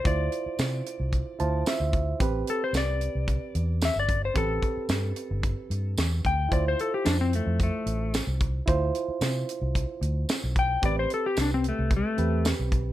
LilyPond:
<<
  \new Staff \with { instrumentName = "Electric slide guitar" } { \time 4/4 \key a \minor \tempo 4 = 111 d''2. r4 | r8 a'16 c''16 d''2 e''16 d''8 c''16 | a'2. r8 g''8 | d''16 c''16 a'16 g'16 d'16 c'16 a8 a4 r4 |
r2. r8 g''8 | d''16 c''16 a'16 g'16 d'16 c'16 a8 a4 r4 | }
  \new Staff \with { instrumentName = "Reed electric piano" } { \time 4/4 \key a \minor << { r2 r8 a''8 e''4 | r1 | r1 | r1 |
r1 | r1 | } \\ { <e' f' c''>2~ <e' f' c''>8 <e' f' c''>4. | <c' g' b'>1 | <c' g' b'>1 | <e' f' c''>1 |
<e' f' c''>1 | <c' g' b'>2~ <c' g' b'>8 <c' g' b'>4. | } >> }
  \new Staff \with { instrumentName = "Fingered electric bass" } { \clef bass \time 4/4 \key a \minor d,8 r8 c8 r16 c,8 r16 d,8 r16 d,8. | a,,8 r8 c,8. c,8 r16 e,8. g,,8. | a,,8 r8 g,8 r16 g,,8 r16 g,8 e,8 d,8 | d,8 r8 f,8. f,8 r16 a,,8. c,8. |
d,8 r8 c8 r16 c,8 r16 d,8 r16 b,,8. | a,,8 r8 c,8. c,8 r16 e,8. b,,8. | }
  \new DrumStaff \with { instrumentName = "Drums" } \drummode { \time 4/4 <hh bd>8 hh8 <hh sn tamb>8 hh8 <hh bd>8 hh8 <hh sn tamb>8 <hh bd>8 | <hh bd>8 hh8 <hh sn tamb>8 hh8 <hh bd>8 hh8 <hh sn tamb>8 <hh bd>8 | <hh bd>8 <hh bd>8 <hh sn tamb>8 hh8 <hh bd>8 hh8 <hh sn tamb>8 <hh bd>8 | <hh bd>8 hh8 <hh sn tamb>8 hh8 <hh bd>8 hh8 <hh sn tamb>8 <hh bd>8 |
<hh bd>8 hh8 <hh sn tamb>8 hh8 <hh bd>8 hh8 <hh sn tamb>8 <hh bd>8 | <hh bd>8 hh8 <hh sn tamb>8 hh8 <hh bd>8 hh8 <hh sn tamb>8 <hh bd>8 | }
>>